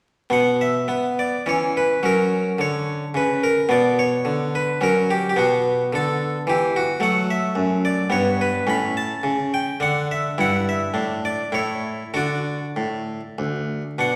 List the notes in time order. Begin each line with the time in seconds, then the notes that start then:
0.30 B2 B3 F#5
0.61 E5
0.88 B3
1.19 D5
1.46 E3 C#4 C#5
1.77 B4
2.03 F#3 C#4 A#4
2.58 D3 C#5
3.14 C#3 B4
3.44 A#4
3.69 B2 B3 D5
3.99 C#5
4.25 D3
4.55 B4
4.81 F#3 C#4 A#4
5.11 G4
5.29 G4
5.36 B2 B3 F#4
5.93 D3 A4
6.47 E3 G4
6.76 F#4
7.00 F#3 A3 F#5
7.31 E5
7.55 F#2
7.85 D5
8.10 G2 B3 C#5
8.41 B4
8.67 A2 C#4 B5
8.97 A5
9.23 C#3
9.54 G5
9.80 D3 D4 F#5
10.11 E5
10.38 G2 E4 F#5
10.69 E5
10.94 A2 D4
11.25 D5
11.52 A2 E4 C#5
12.14 D3 D4 F#4 D5
12.76 A2
13.38 D2
13.98 B2 D4 F#5